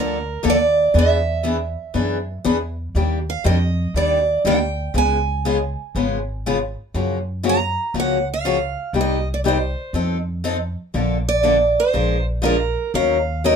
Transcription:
Already playing: D2 D3 F3 A#3 D4 A4
0.00 A#4
0.43 D#2 D3 F3 A#3 D4 A4
0.50 D5
0.94 E2 E3 B3 D4 G#4
0.99 E5
1.43 E3 B3 D4 G#4
1.94 F#2 E3 B3 D4 G#4
2.45 E2 E3 B3 D4 G#4
2.95 D#2 D#3 G3 A#3 D4 G4
3.30 F5
3.44 F2 D#3 G3 A#3 D4 G4 D#5
3.94 D#2 D#3 G3 A#3 D4 G4 D5
4.45 D2 D#3 G3 A#3 D4 G4 G5
4.94 C#2 C#3 G#3 B3 F4 G#4 G#5
5.45 C#3 G#3 B3 F4 G#4
5.95 G#1 C#3 G#3 B3 F4 G#4
6.46 C#3 G#3 B3 F4 G#4
6.94 F#2 C#3 F3 A#3 C#4 F#4
7.43 C#3 F3 A#3 C#4 F#4
7.49 A#5
7.94 C#2 C#3 F3 A#3 C#4 F#4
8.00 F#5
8.34 F5
8.45 C#3 F3 A#3 C#4 F#4
8.93 C2 C3 G3 A#3 D#4 G4
9.01 D#5
9.34 D5
9.44 C3 G3 A#3 D#4 G4
9.48 C5
9.93 F2 F3 C4 D#4 A4
10.44 F3 C4 D#4 A4
10.94 A#1 D3 F3 A#3 D4 A4
11.29 D5
11.43 D3 F3 A#3 D4 A4
11.80 C5
11.93 A#1 F3 G#3 D4 F4 A#4
12.42 F3 G#3 D4 F4 A#4
12.94 D#2 D#3 F#3 C#4 D#4 A#4 F5
13.44 D#3 F#3 C#4 D#4 A#4 D#5

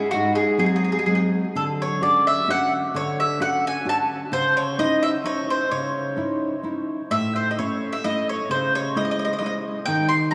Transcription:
Already playing: G#4
0.11 G#2 F#4
0.35 G#4
0.58 F#3 G#3 C4 G#4
0.66 G#4
0.76 G#4
0.84 G#4
0.92 G#4
0.99 G#4
1.06 F#3 G#3 C4 G#4
1.15 G#4
1.55 D3 A4
1.82 C#5
2.01 C#4 D4 F#4 D5
2.27 E5
2.48 C#4 D4 F#4 F#5
2.94 D3 C#5
3.20 E5
3.40 C#4 D4 F#4 F#5
3.67 G#5
3.85 C#4 D4 F#4
3.89 A5
4.32 C#3 C5
4.57 C#5
4.78 C#4 D#4 E4 D#5
5.03 E5
5.24 C#4 D#4 E4 C#5
5.50 C5
5.71 C#3 C#5
6.17 C#4 D#4 E4
6.63 C#4 D#4 E4
7.10 A2 E5
7.36 C5
7.51 D#5
7.58 A3 C#4 E4 C#5
7.93 E5
8.04 A3 C#4 E4 D#5
8.29 C#5
8.50 C#3 C5
8.75 C#5
8.95 G#3 C#4 E4 D#5
9.05 D#5
9.11 D#5
9.19 D#5
9.25 D#5
9.33 D#5
9.39 G#3 C#4 E4 D#5
9.46 D#5
9.86 D#3 G5
10.09 C6
10.31 A#5

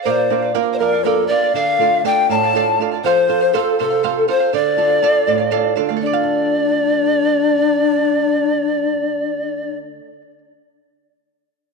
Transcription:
0.03 A#2 A#4 C5 D5 F5
0.11 D5
0.30 A#3 D4 F4 A#4 D5 F5
0.42 D5 F5
0.54 A#3 D4 F4 A#4 D5 F5
0.73 C5 D5
0.79 F2 A#4 D5 F5
0.83 D5
0.92 D5 F5
1.04 A#3 D4 F4 A4 A#4 D5 F5
1.27 A#3 D4 F4 A#4 D5 F5
1.32 F5
1.42 D5 F5
1.54 D3 A4 D5 F5
1.78 A3 D4 F4 A4 D5 F5
1.93 D5 F5
2.04 A3 D4 F4 A4 D5 F5 G5
2.29 A2 A4 D5 F5 A5 A#5
2.35 A5
2.43 D5 F5
2.53 A3 D4 F4 A4 D5 F5
2.79 A3 D4 F4 A4 D5 F5
2.92 D5 F5
3.04 F3 A4 C5 F5
3.28 C4 F4 A4 C5 F5
3.41 C5 F5
3.53 C4 F4 A4 A#4 C5 F5
3.60 A4
3.79 C3 A4 A#4 C5 F5
3.85 A4
3.90 C5 F5
4.03 C4 F4 A4 C5 F5
4.28 C4 F4 A4 C5 F5
4.40 C5 F5
4.53 D3 A4 D5 F5
4.77 D4 F4 A4 D5 F5
4.89 D5 F5
5.02 D4 F4 A4 D5 F5
5.27 A2 A4 D5 F5
5.38 D5 F5
5.51 D4 F4 A4 D5 F5
5.76 D3 D4 F4 A4 D5 F5
5.89 A3 D5 F5
5.97 A4
6.01 D4 D5
6.06 D5
6.12 F4 F5
6.24 A4

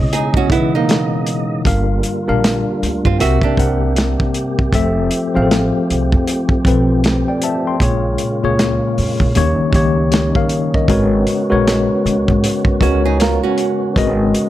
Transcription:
Already playing: B2 C#3 G#3 B3 E4 C#5 D#5
0.00 C#3
0.13 D#4 G#4, closed hi-hat
0.34 C#4 F#4, kick
0.50 B2 C#3 B3 D#4 E4 F#5, kick, closed hi-hat
0.58 E3
0.75 A#3 D#4
0.89 snare, closed hi-hat
1.27 closed hi-hat
1.64 G1 D3 G3 A#3 D4 F4 A#4 F5, kick, closed hi-hat
2.03 closed hi-hat
2.27 A#1 G3 D4 A#4 F5
2.44 snare, closed hi-hat
2.83 D2, closed hi-hat
3.05 G2 C4 F4, kick
3.19 C2 C3 A#3 C4 F#4 G4 A#4 E5, closed hi-hat
3.42 D4 G4, muted upright bass stroke, kick
3.57 C2 C3 C4 A#4 F#5, kick, closed hi-hat
3.96 snare, closed hi-hat
4.20 kick
4.34 closed hi-hat
4.59 kick
4.72 F1 F3 A3 C4 A4 E5, kick, closed hi-hat
5.11 closed hi-hat
5.35 A1 F3 C4 G#4 F5
5.42 A4
5.51 snare, closed hi-hat
5.90 C2, closed hi-hat
6.12 F2, kick
6.28 closed hi-hat
6.49 muted upright bass stroke, kick
6.65 B1 F3 C4 A4 B4, kick, closed hi-hat
7.04 snare, closed hi-hat
7.28 D5 G5
7.42 E5 A5, closed hi-hat
7.67 G5 C6
7.80 A#1 A#2 C#3 G#3 A#3 F4 G#4 C#5, kick, closed hi-hat
8.18 closed hi-hat
8.43 C#2 A#2 A#3 G#4 C#5
8.59 snare, closed hi-hat
8.98 F2, open hi-hat
9.20 A#2, kick
9.34 D#2 D#3 G3 A#3 C#4 D#4 G4 C#5, closed hi-hat
9.60 muted upright bass stroke
9.73 C#2 D#3 A#3 G4 C#5, kick, closed hi-hat
10.12 G4 C#5, snare, closed hi-hat
10.35 A#4 F5, kick
10.49 closed hi-hat
10.74 A#4 D#5, kick
10.88 G#1 G#3 B3 F#4 A#4 B4 C#5, kick, closed hi-hat
11.27 closed hi-hat
11.50 A#1 G#3 F#4 A#4 B4 C#5
11.68 snare, closed hi-hat
12.06 C#2, closed hi-hat
12.28 G#2, kick
12.44 closed hi-hat
12.65 muted upright bass stroke, kick
12.81 C#2 G#3 C#4 F#4 A#4 B4 C#5, kick, closed hi-hat
13.05 D#4 G#4
13.20 F4 A#4, snare, closed hi-hat
13.43 C#4 F#4
13.58 closed hi-hat
13.96 G#1 G#3 F#4 A#4 B4 D#5, kick, closed hi-hat
14.35 closed hi-hat

